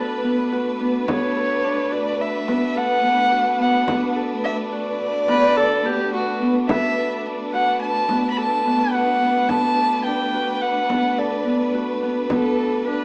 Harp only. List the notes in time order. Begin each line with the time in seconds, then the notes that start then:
Already playing: B3 D4 F#4 A4
0.24 B3
0.52 F#4
0.80 B3
1.08 B3
1.36 A4
1.64 D4
1.92 F#4
2.48 B3
2.76 A4
3.03 B3
3.31 F#4
3.60 B3
3.88 B3
4.16 A4
4.44 D4
4.72 F#4
5.28 B3
5.57 A4
5.85 B3
6.14 F#4
6.42 B3
6.69 B3
6.98 A4
7.26 D4
7.54 F#4
8.10 B3
8.38 A4
8.66 B3
8.94 F#4
9.22 B3
9.50 B3
9.78 A4
10.06 D4
10.34 F#4
10.90 B3
11.18 A4
11.46 B3
11.74 F#4
12.02 B3
12.31 B3
12.59 A4
12.87 D4